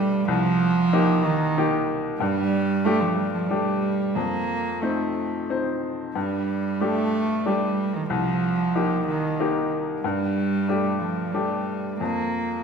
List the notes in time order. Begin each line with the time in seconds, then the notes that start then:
Already playing: G2 G3 A3 D4 G4
0.28 C2 F3
0.93 A#3 D#4 G4
1.25 D#3
1.57 A#3 D#4 G4
2.20 G2 G3
2.84 A3 D4 G4
3.01 F3
3.16 G3
3.33 F3
3.48 G3 A3 D4 G4
4.15 F2 A#3
4.81 A3 C4 D#4 C5
5.50 C4 D#4 C5
6.15 G2 G3
6.81 A3 D4 G4
7.46 G3 A3 D4 G4
7.95 D#3
8.10 C2 F3
8.75 A#3 D#4 G4
9.07 D#3
9.40 A#3 D#4 G4
10.02 G2 G3
10.68 A3 D4 G4
10.99 F3
11.32 G3 A3 D4 G4
12.01 F2 A#3